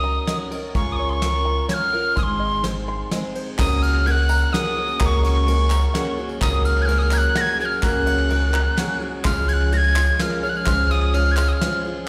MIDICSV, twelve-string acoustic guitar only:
0, 0, Header, 1, 2, 480
1, 0, Start_track
1, 0, Tempo, 472069
1, 762, Time_signature, 3, 2, 24, 8
1, 12292, End_track
2, 0, Start_track
2, 0, Title_t, "Twelve-string acoustic guitar"
2, 0, Program_c, 0, 25
2, 0, Note_on_c, 0, 54, 49
2, 0, Note_on_c, 0, 61, 50
2, 0, Note_on_c, 0, 63, 51
2, 0, Note_on_c, 0, 70, 65
2, 266, Note_off_c, 0, 54, 0
2, 274, Note_off_c, 0, 61, 0
2, 279, Note_on_c, 0, 54, 58
2, 283, Note_off_c, 0, 63, 0
2, 286, Note_on_c, 0, 61, 58
2, 293, Note_off_c, 0, 70, 0
2, 296, Note_on_c, 0, 63, 65
2, 303, Note_on_c, 0, 70, 70
2, 504, Note_off_c, 0, 70, 0
2, 516, Note_on_c, 0, 70, 49
2, 520, Note_off_c, 0, 54, 0
2, 521, Note_off_c, 0, 63, 0
2, 524, Note_off_c, 0, 61, 0
2, 533, Note_on_c, 0, 63, 44
2, 544, Note_on_c, 0, 61, 41
2, 759, Note_off_c, 0, 70, 0
2, 760, Note_off_c, 0, 61, 0
2, 763, Note_on_c, 0, 49, 64
2, 765, Note_on_c, 0, 56, 70
2, 768, Note_off_c, 0, 63, 0
2, 772, Note_on_c, 0, 61, 72
2, 774, Note_on_c, 0, 65, 70
2, 779, Note_on_c, 0, 70, 70
2, 1238, Note_off_c, 0, 56, 0
2, 1238, Note_off_c, 0, 61, 0
2, 1242, Note_on_c, 0, 56, 50
2, 1244, Note_off_c, 0, 49, 0
2, 1249, Note_off_c, 0, 65, 0
2, 1250, Note_on_c, 0, 61, 54
2, 1252, Note_off_c, 0, 70, 0
2, 1266, Note_on_c, 0, 65, 57
2, 1272, Note_on_c, 0, 70, 57
2, 1711, Note_off_c, 0, 56, 0
2, 1714, Note_off_c, 0, 61, 0
2, 1715, Note_on_c, 0, 56, 55
2, 1722, Note_off_c, 0, 65, 0
2, 1726, Note_on_c, 0, 61, 46
2, 1733, Note_off_c, 0, 70, 0
2, 1734, Note_on_c, 0, 65, 54
2, 1745, Note_on_c, 0, 70, 56
2, 1948, Note_off_c, 0, 70, 0
2, 1961, Note_off_c, 0, 56, 0
2, 1961, Note_on_c, 0, 70, 48
2, 1964, Note_off_c, 0, 65, 0
2, 1966, Note_off_c, 0, 61, 0
2, 1976, Note_on_c, 0, 65, 43
2, 1986, Note_on_c, 0, 61, 35
2, 2199, Note_on_c, 0, 44, 70
2, 2204, Note_off_c, 0, 70, 0
2, 2204, Note_on_c, 0, 51, 75
2, 2207, Note_off_c, 0, 61, 0
2, 2210, Note_off_c, 0, 65, 0
2, 2211, Note_on_c, 0, 56, 64
2, 2211, Note_on_c, 0, 60, 67
2, 2214, Note_on_c, 0, 63, 80
2, 2221, Note_on_c, 0, 68, 72
2, 2673, Note_off_c, 0, 56, 0
2, 2683, Note_off_c, 0, 44, 0
2, 2683, Note_off_c, 0, 60, 0
2, 2685, Note_on_c, 0, 56, 50
2, 2686, Note_off_c, 0, 51, 0
2, 2691, Note_off_c, 0, 63, 0
2, 2694, Note_off_c, 0, 68, 0
2, 2695, Note_on_c, 0, 60, 50
2, 2708, Note_on_c, 0, 63, 57
2, 2715, Note_on_c, 0, 68, 54
2, 3155, Note_off_c, 0, 56, 0
2, 3164, Note_off_c, 0, 60, 0
2, 3167, Note_on_c, 0, 56, 52
2, 3172, Note_off_c, 0, 63, 0
2, 3177, Note_on_c, 0, 60, 54
2, 3182, Note_off_c, 0, 68, 0
2, 3184, Note_on_c, 0, 63, 62
2, 3198, Note_on_c, 0, 68, 62
2, 3645, Note_on_c, 0, 49, 68
2, 3647, Note_off_c, 0, 56, 0
2, 3651, Note_on_c, 0, 58, 78
2, 3652, Note_off_c, 0, 60, 0
2, 3656, Note_off_c, 0, 63, 0
2, 3657, Note_on_c, 0, 61, 82
2, 3658, Note_off_c, 0, 68, 0
2, 3666, Note_on_c, 0, 66, 82
2, 3670, Note_on_c, 0, 68, 84
2, 4108, Note_off_c, 0, 58, 0
2, 4120, Note_on_c, 0, 58, 59
2, 4126, Note_off_c, 0, 49, 0
2, 4134, Note_off_c, 0, 66, 0
2, 4136, Note_off_c, 0, 61, 0
2, 4140, Note_on_c, 0, 61, 52
2, 4146, Note_on_c, 0, 66, 62
2, 4148, Note_off_c, 0, 68, 0
2, 4152, Note_on_c, 0, 68, 60
2, 4585, Note_off_c, 0, 58, 0
2, 4597, Note_on_c, 0, 58, 57
2, 4605, Note_off_c, 0, 66, 0
2, 4608, Note_off_c, 0, 61, 0
2, 4613, Note_on_c, 0, 61, 62
2, 4617, Note_on_c, 0, 66, 59
2, 4627, Note_off_c, 0, 68, 0
2, 4631, Note_on_c, 0, 68, 61
2, 4825, Note_off_c, 0, 68, 0
2, 4837, Note_on_c, 0, 68, 48
2, 4842, Note_off_c, 0, 58, 0
2, 4842, Note_off_c, 0, 66, 0
2, 4850, Note_off_c, 0, 61, 0
2, 4854, Note_on_c, 0, 66, 44
2, 4867, Note_on_c, 0, 61, 38
2, 5081, Note_off_c, 0, 61, 0
2, 5082, Note_off_c, 0, 68, 0
2, 5083, Note_off_c, 0, 66, 0
2, 5083, Note_on_c, 0, 49, 78
2, 5088, Note_on_c, 0, 58, 87
2, 5093, Note_on_c, 0, 61, 84
2, 5095, Note_on_c, 0, 66, 87
2, 5104, Note_on_c, 0, 68, 91
2, 5546, Note_off_c, 0, 58, 0
2, 5558, Note_on_c, 0, 58, 61
2, 5564, Note_off_c, 0, 49, 0
2, 5564, Note_off_c, 0, 61, 0
2, 5568, Note_on_c, 0, 61, 62
2, 5570, Note_off_c, 0, 66, 0
2, 5581, Note_on_c, 0, 66, 68
2, 5587, Note_off_c, 0, 68, 0
2, 5591, Note_on_c, 0, 68, 67
2, 5789, Note_off_c, 0, 68, 0
2, 5801, Note_on_c, 0, 68, 48
2, 5802, Note_off_c, 0, 58, 0
2, 5807, Note_off_c, 0, 61, 0
2, 5807, Note_off_c, 0, 66, 0
2, 5819, Note_on_c, 0, 66, 43
2, 5831, Note_on_c, 0, 61, 41
2, 6042, Note_off_c, 0, 61, 0
2, 6043, Note_off_c, 0, 68, 0
2, 6045, Note_on_c, 0, 58, 65
2, 6049, Note_off_c, 0, 66, 0
2, 6054, Note_on_c, 0, 61, 75
2, 6061, Note_on_c, 0, 66, 61
2, 6075, Note_on_c, 0, 68, 75
2, 6268, Note_off_c, 0, 68, 0
2, 6280, Note_on_c, 0, 68, 56
2, 6283, Note_off_c, 0, 66, 0
2, 6285, Note_off_c, 0, 58, 0
2, 6289, Note_off_c, 0, 61, 0
2, 6295, Note_on_c, 0, 66, 49
2, 6310, Note_on_c, 0, 61, 47
2, 6521, Note_off_c, 0, 61, 0
2, 6521, Note_on_c, 0, 49, 81
2, 6522, Note_off_c, 0, 68, 0
2, 6525, Note_off_c, 0, 66, 0
2, 6526, Note_on_c, 0, 58, 81
2, 6533, Note_on_c, 0, 61, 86
2, 6537, Note_on_c, 0, 66, 77
2, 6544, Note_on_c, 0, 68, 89
2, 6982, Note_off_c, 0, 58, 0
2, 6994, Note_on_c, 0, 58, 62
2, 7001, Note_off_c, 0, 61, 0
2, 7002, Note_off_c, 0, 49, 0
2, 7002, Note_off_c, 0, 66, 0
2, 7005, Note_on_c, 0, 61, 71
2, 7014, Note_on_c, 0, 66, 64
2, 7023, Note_off_c, 0, 68, 0
2, 7027, Note_on_c, 0, 68, 64
2, 7470, Note_off_c, 0, 58, 0
2, 7482, Note_on_c, 0, 58, 60
2, 7487, Note_off_c, 0, 61, 0
2, 7489, Note_off_c, 0, 66, 0
2, 7491, Note_on_c, 0, 61, 66
2, 7499, Note_on_c, 0, 66, 63
2, 7504, Note_off_c, 0, 68, 0
2, 7508, Note_on_c, 0, 68, 61
2, 7708, Note_off_c, 0, 68, 0
2, 7720, Note_on_c, 0, 68, 55
2, 7722, Note_off_c, 0, 58, 0
2, 7725, Note_off_c, 0, 66, 0
2, 7727, Note_off_c, 0, 61, 0
2, 7737, Note_on_c, 0, 66, 50
2, 7747, Note_on_c, 0, 61, 41
2, 7961, Note_off_c, 0, 68, 0
2, 7964, Note_on_c, 0, 49, 74
2, 7967, Note_off_c, 0, 61, 0
2, 7970, Note_off_c, 0, 66, 0
2, 7970, Note_on_c, 0, 58, 93
2, 7979, Note_on_c, 0, 61, 85
2, 7981, Note_on_c, 0, 66, 83
2, 7984, Note_on_c, 0, 68, 86
2, 8424, Note_off_c, 0, 58, 0
2, 8436, Note_on_c, 0, 58, 56
2, 8443, Note_off_c, 0, 49, 0
2, 8447, Note_off_c, 0, 66, 0
2, 8449, Note_off_c, 0, 61, 0
2, 8453, Note_on_c, 0, 61, 60
2, 8459, Note_on_c, 0, 66, 64
2, 8466, Note_off_c, 0, 68, 0
2, 8470, Note_on_c, 0, 68, 67
2, 8662, Note_off_c, 0, 68, 0
2, 8674, Note_on_c, 0, 68, 60
2, 8678, Note_off_c, 0, 66, 0
2, 8679, Note_off_c, 0, 58, 0
2, 8687, Note_off_c, 0, 61, 0
2, 8690, Note_on_c, 0, 66, 49
2, 8702, Note_on_c, 0, 61, 50
2, 8914, Note_off_c, 0, 61, 0
2, 8914, Note_on_c, 0, 58, 65
2, 8918, Note_off_c, 0, 68, 0
2, 8923, Note_off_c, 0, 66, 0
2, 8926, Note_on_c, 0, 61, 68
2, 8935, Note_on_c, 0, 66, 63
2, 8945, Note_on_c, 0, 68, 64
2, 9142, Note_off_c, 0, 68, 0
2, 9154, Note_on_c, 0, 68, 55
2, 9158, Note_off_c, 0, 58, 0
2, 9162, Note_off_c, 0, 66, 0
2, 9164, Note_off_c, 0, 61, 0
2, 9174, Note_on_c, 0, 66, 52
2, 9186, Note_on_c, 0, 61, 48
2, 9391, Note_on_c, 0, 49, 76
2, 9393, Note_off_c, 0, 61, 0
2, 9397, Note_off_c, 0, 68, 0
2, 9400, Note_on_c, 0, 56, 77
2, 9406, Note_on_c, 0, 61, 80
2, 9407, Note_off_c, 0, 66, 0
2, 9410, Note_on_c, 0, 68, 83
2, 9411, Note_on_c, 0, 65, 87
2, 9875, Note_off_c, 0, 56, 0
2, 9876, Note_off_c, 0, 49, 0
2, 9880, Note_off_c, 0, 61, 0
2, 9880, Note_on_c, 0, 56, 61
2, 9886, Note_off_c, 0, 65, 0
2, 9892, Note_on_c, 0, 61, 57
2, 9901, Note_on_c, 0, 65, 66
2, 9905, Note_off_c, 0, 68, 0
2, 9909, Note_on_c, 0, 68, 64
2, 10109, Note_off_c, 0, 68, 0
2, 10120, Note_off_c, 0, 56, 0
2, 10122, Note_on_c, 0, 68, 47
2, 10126, Note_off_c, 0, 61, 0
2, 10129, Note_off_c, 0, 65, 0
2, 10141, Note_on_c, 0, 65, 40
2, 10158, Note_on_c, 0, 61, 38
2, 10357, Note_off_c, 0, 61, 0
2, 10357, Note_on_c, 0, 56, 56
2, 10361, Note_off_c, 0, 68, 0
2, 10368, Note_off_c, 0, 65, 0
2, 10369, Note_on_c, 0, 61, 60
2, 10380, Note_on_c, 0, 65, 71
2, 10392, Note_on_c, 0, 68, 64
2, 10598, Note_off_c, 0, 68, 0
2, 10599, Note_off_c, 0, 56, 0
2, 10605, Note_off_c, 0, 61, 0
2, 10610, Note_off_c, 0, 65, 0
2, 10610, Note_on_c, 0, 68, 50
2, 10627, Note_on_c, 0, 65, 50
2, 10638, Note_on_c, 0, 61, 37
2, 10845, Note_off_c, 0, 68, 0
2, 10853, Note_off_c, 0, 65, 0
2, 10854, Note_on_c, 0, 49, 73
2, 10855, Note_off_c, 0, 61, 0
2, 10859, Note_on_c, 0, 56, 88
2, 10867, Note_on_c, 0, 61, 82
2, 10869, Note_on_c, 0, 65, 82
2, 10870, Note_on_c, 0, 68, 90
2, 11326, Note_off_c, 0, 49, 0
2, 11326, Note_off_c, 0, 56, 0
2, 11327, Note_off_c, 0, 61, 0
2, 11330, Note_on_c, 0, 56, 57
2, 11334, Note_off_c, 0, 65, 0
2, 11339, Note_on_c, 0, 61, 61
2, 11349, Note_on_c, 0, 65, 70
2, 11351, Note_off_c, 0, 68, 0
2, 11355, Note_on_c, 0, 68, 69
2, 11554, Note_off_c, 0, 68, 0
2, 11564, Note_off_c, 0, 56, 0
2, 11566, Note_on_c, 0, 68, 49
2, 11569, Note_off_c, 0, 61, 0
2, 11569, Note_off_c, 0, 65, 0
2, 11581, Note_on_c, 0, 65, 46
2, 11594, Note_on_c, 0, 61, 37
2, 11803, Note_off_c, 0, 68, 0
2, 11804, Note_off_c, 0, 61, 0
2, 11807, Note_on_c, 0, 56, 58
2, 11810, Note_off_c, 0, 65, 0
2, 11817, Note_on_c, 0, 61, 62
2, 11829, Note_on_c, 0, 65, 61
2, 11838, Note_on_c, 0, 68, 70
2, 12037, Note_off_c, 0, 68, 0
2, 12043, Note_off_c, 0, 56, 0
2, 12048, Note_off_c, 0, 61, 0
2, 12049, Note_on_c, 0, 68, 63
2, 12054, Note_off_c, 0, 65, 0
2, 12067, Note_on_c, 0, 65, 54
2, 12079, Note_on_c, 0, 61, 50
2, 12284, Note_off_c, 0, 68, 0
2, 12292, Note_off_c, 0, 61, 0
2, 12292, Note_off_c, 0, 65, 0
2, 12292, End_track
0, 0, End_of_file